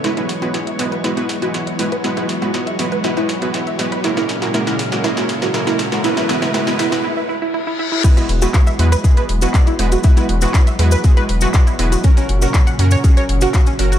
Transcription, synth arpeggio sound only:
X:1
M:4/4
L:1/16
Q:1/4=120
K:E
V:1 name="Synth arpeggio sound"
E E z F z e z B E E z F z e z B | E E z F z e z B E E z F z e z B | E E z F E E z F E E z F E E z F | E E E E E E E E E E E E E E E E |
E E z F z e z B z B z F z E z F | E E z F z e z B z B z F z E z F | C C z F z f z c z c z F z C z F |]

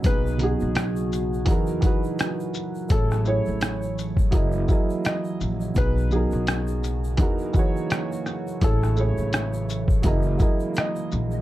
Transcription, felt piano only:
X:1
M:4/4
L:1/8
Q:"Swing 16ths" 1/4=84
K:B
V:1 name="Felt piano"
B G4- G z2 | =A c4- c d z | B G4- G z2 | =A c4- c d z |]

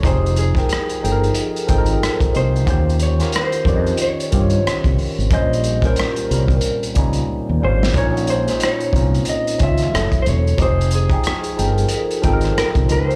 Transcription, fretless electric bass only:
X:1
M:4/4
L:1/16
Q:"Swing 16ths" 1/4=91
K:Bbdor
V:1 name="Fretless electric bass" clef=bass
F,,,4 z2 G,,,2 z2 A,,,2 z2 C,,2 | E,,4 z2 F,,2 z2 G,,2 z C,, z A,,, | B,,,4 z2 C,,2 z2 D,,2 z E,, A,,,2 | B,,,4 z2 C,,2 z2 D,,2 _G,,, z _F,,,2 |
F,,,4 z2 G,,,2 z2 A,,,2 z C,, D,,2 |]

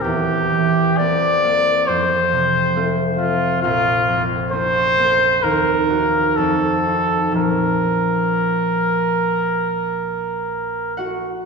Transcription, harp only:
X:1
M:4/4
L:1/8
Q:1/4=64
K:Bbm
V:1 name="Harp"
z8 | z8 | z6 z [Gg] |]
V:2 name="Harp"
[=E,,B,C] =E, [B,C=G] B, F,, C, [=A,CF] A, | B,,, F,, [B,DF] B, E,, [EG] F,, [EF] | [B,,,F,DF]8 |]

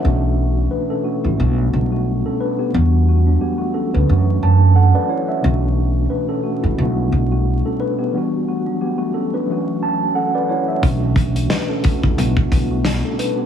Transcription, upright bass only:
X:1
M:4/4
L:1/16
Q:"Swing 16ths" 1/4=89
K:Bm
V:1 name="Upright bass" clef=bass
B,,,4 z3 A,,, B,,,2 B,,,3 z3 | E,,4 z3 D,, F,,2 F,,3 z3 | B,,,4 z3 A,,, B,,,2 B,,,3 z3 | z16 |
B,,,4 z3 A,,, B,,,2 B,,,3 z3 |]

